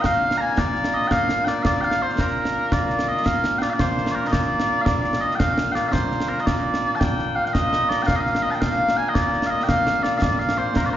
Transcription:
Already playing: A#2 A#3
0.01 G5, concert bass drum, snare
0.06 F5
0.13 snare
0.31 snare
0.37 G#5 A#5
0.58 D5, concert bass drum, snare
0.76 snare
0.84 snare
0.94 D#5
1.02 snare
1.07 G5, concert bass drum, snare
1.11 F5
1.29 snare
1.44 D5 G5, snare
1.63 D5 F5, concert bass drum, snare
1.81 F5 G5, snare
1.91 snare
2.02 C5
2.10 C5, snare
2.18 A#4, concert bass drum, snare
2.28 snare
2.45 snare
2.72 D5, concert bass drum, snare
2.90 snare
2.99 snare
3.09 D#5
3.17 snare
3.26 F5, concert bass drum, snare
3.44 snare
3.58 D5 G5, snare
3.70 D5 F5
3.79 C5, concert bass drum, snare
3.98 snare
4.06 snare
4.11 A#4 D5
4.27 D#5
4.32 D5, concert bass drum, snare
4.42 snare
4.60 snare
4.81 D5 F5
4.86 concert bass drum, snare
5.04 snare
5.13 snare
5.21 D#5
5.31 G5, snare
5.39 F5, concert bass drum, snare
5.58 snare
5.72 D5 G5, snare
5.89 C5 F5
5.93 concert bass drum, snare
6.11 snare
6.20 snare
6.29 A#4
6.38 D#5, snare
6.46 D5, concert bass drum, snare
6.56 snare
6.74 snare
6.95 A5
6.99 G5, concert bass drum, snare
7.19 snare
7.35 F5
7.45 F5 G5, snare
7.53 D#5, concert bass drum, snare
7.73 snare
7.89 D5, snare
8.02 G5
8.06 F5, concert bass drum, snare
8.16 D#5
8.21 F5
8.26 snare
8.35 snare
8.42 D#5
8.50 A5, snare
8.54 G5
8.61 F5, concert bass drum, snare
8.71 snare
8.89 snare
8.97 G#5
9.09 D#5
9.15 D5, concert bass drum, snare
9.33 snare
9.42 snare
9.47 D#5 F5
9.60 G5, snare
9.68 F5, concert bass drum, snare
9.87 snare
10.03 D5, snare
10.18 F5
10.22 D5, concert bass drum, snare
10.39 F5, snare
10.49 snare
10.58 C5
10.76 A#4, concert bass drum, snare
10.85 D5, snare
10.89 C5
10.94 A#4

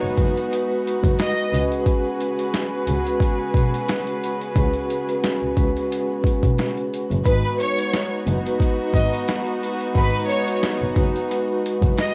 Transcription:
Already playing: G#3 B3 D#4 F#4 B4
0.03 F#1, shaker
0.15 F#1 G#3 D#4 F#4 B4, kick, closed hi-hat
0.37 closed hi-hat, shaker
0.51 G#3 D#4 F#4 B4, closed hi-hat, shaker
0.70 shaker
0.85 closed hi-hat, shaker
1.03 F#1, kick, closed hi-hat, shaker
1.19 D#5, snare, closed hi-hat, shaker
1.37 closed hi-hat, shaker
1.52 C#2 C#3 G#3 B3 C#4 F#4 G#4 B4, closed hi-hat, shaker
1.71 closed hi-hat, shaker
1.84 G#3 C#4 F#4 B4, kick, closed hi-hat, shaker
2.05 shaker
2.21 closed hi-hat
2.39 closed hi-hat, shaker
2.54 snare, closed hi-hat, shaker
2.73 shaker
2.87 C#2, closed hi-hat
3.05 G#3 C#4 F#4 B4, closed hi-hat, shaker
3.20 kick, closed hi-hat, shaker
3.40 shaker
3.54 B1, kick, closed hi-hat, shaker
3.74 closed hi-hat, shaker
3.88 snare, closed hi-hat, shaker
4.07 closed hi-hat, shaker
4.23 closed hi-hat, shaker
4.40 closed hi-hat, shaker
4.55 C#2 G#3 C#4 F#4 B4, kick, closed hi-hat, shaker
4.74 closed hi-hat, shaker
4.89 closed hi-hat, shaker
5.07 G#3 C#4 F#4 B4, closed hi-hat, shaker
5.24 snare, closed hi-hat, shaker
5.42 C#2, shaker
5.56 C#2 G#3 C#4 F#4 B4, kick, closed hi-hat, shaker
5.77 closed hi-hat, shaker
5.90 G#3 C#4 F#4 B4, closed hi-hat, shaker
6.10 shaker
6.24 kick, closed hi-hat
6.43 B1, kick, closed hi-hat, shaker
6.58 snare, closed hi-hat, shaker
6.77 closed hi-hat, shaker
6.92 closed hi-hat, shaker
7.10 F#1, closed hi-hat, shaker
7.25 G#1 G#3 B3 D#4 F#4 B4, kick, closed hi-hat, shaker
7.45 shaker
7.60 C#5, closed hi-hat
7.78 closed hi-hat, shaker
7.93 snare, closed hi-hat, shaker
8.12 shaker
8.27 F#1, closed hi-hat
8.45 G#3 D#4 F#4 B4, closed hi-hat, shaker
8.60 kick, closed hi-hat, shaker
8.79 shaker
8.93 G#1 D#5, kick, closed hi-hat, shaker
9.13 closed hi-hat, shaker
9.28 snare, closed hi-hat, shaker
9.47 closed hi-hat, shaker
9.62 closed hi-hat, shaker
9.80 closed hi-hat, shaker
9.92 G#1 G#3 D#4 F#4 B4, kick, closed hi-hat, shaker
10.14 shaker
10.29 C#5, closed hi-hat
10.47 G#3 D#4 F#4 B4, closed hi-hat, shaker
10.63 snare, closed hi-hat, shaker
10.82 F#1, shaker
10.94 F#1 G#3 D#4 F#4 B4, kick, closed hi-hat
11.16 closed hi-hat, shaker
11.30 G#3 D#4 F#4 B4, closed hi-hat, shaker
11.49 shaker
11.64 closed hi-hat, shaker
11.82 F#1, kick, closed hi-hat, shaker
11.97 D#5, snare, closed hi-hat, shaker

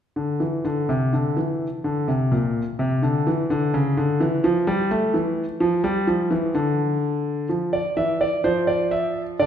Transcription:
0.16 D3
0.40 E3
0.65 D3
0.89 C3
1.13 D3
1.37 E3
1.84 D3
2.08 C3
2.31 A#2
2.79 C3
3.02 D3
3.27 E3
3.50 D3
3.74 C#3
3.97 D3
4.20 E3
4.44 F3
4.67 G3
4.91 A3
5.14 E3
5.60 F3
5.84 G3
6.07 F3
6.31 E3
6.55 D3
7.49 F3
7.73 D5
7.97 E3 E5
8.21 D5
8.44 F3 C5
8.67 D5
8.91 E5
9.39 D3 D5

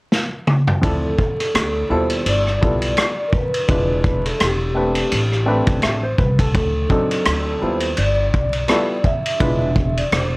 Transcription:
0.12 snare
0.47 mid tom
0.67 floor tom
0.82 D2 F3 C4 D4 E4 A4, kick, ride
1.18 kick
1.40 cross-stick, ride
1.55 D2, cross-stick, hi-hat pedal, ride
1.89 D#2 B2 G3 E4 F4 A4 C5
2.10 ride
2.26 G1 D5, ride
2.47 cross-stick
2.61 B1 G3 B3 E4 F4 A4, kick
2.82 ride
2.97 cross-stick, hi-hat pedal, ride
3.28 A#4
3.33 B4, kick
3.54 ride
3.68 E1 G#3 D4 E4 F4 B4, kick, ride
4.04 kick
4.26 A4, cross-stick, ride
4.40 E1 G4, cross-stick, hi-hat pedal, ride
4.74 A3 C4 D4 G4 B4
4.95 ride
5.12 A1, ride
5.32 cross-stick
5.46 A3 C4 D4 G4 B4
5.67 B1, kick, ride
5.82 A1 E5, cross-stick, hi-hat pedal, ride
6.03 C5
6.18 C2 B4, kick
6.39 A4, kick, ride
6.55 D2 A4, kick, ride
6.89 F#3 C4 D4 D#4 A4, kick
7.11 cross-stick, ride
7.25 D2, cross-stick, hi-hat pedal, ride
7.61 D#2 G3 B3 E4 F4 A4 C5
7.80 ride
7.97 G1 D5, ride
8.34 B1, kick
8.53 ride
8.68 G3 B3 E4 F4 A4, cross-stick, hi-hat pedal, ride
9.04 E5, kick
9.26 ride
9.40 E1 G#3 D4 E4 F4 B4, kick, ride
9.76 kick
9.97 D5, ride
10.12 E1 C5, cross-stick, hi-hat pedal, ride

